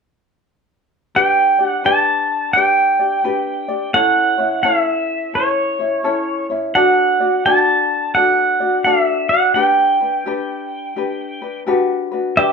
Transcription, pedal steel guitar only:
1.16 G5
1.66 F#5
1.86 A5
2.53 G5
3.94 F#5
4.63 E5
5.35 C#5
6.75 F#5
7.46 A5
8.15 F#5
8.84 F5
9.02 E5
9.29 F#5
9.54 G5
12.37 G4 E5

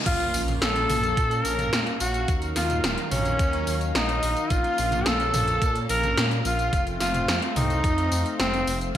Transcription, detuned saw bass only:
0.06 A#1
0.34 A#1
0.62 A#1
0.90 A#1
1.17 A#2
1.45 A#1
1.73 A#2
2.00 A#1
2.28 D#2
2.56 D#2
2.84 D#1
3.12 A#1
3.40 D#2
3.67 D#2
3.95 A#1
4.23 A#1
4.51 A#1
4.79 A#1
5.06 A#1
5.34 A#1
5.62 A#2
5.90 A#1
6.17 A#2
6.45 A#1
6.73 F1
7.01 F1
7.29 F2
7.56 C2
7.84 F2
8.12 F2
8.39 F1
8.67 F1

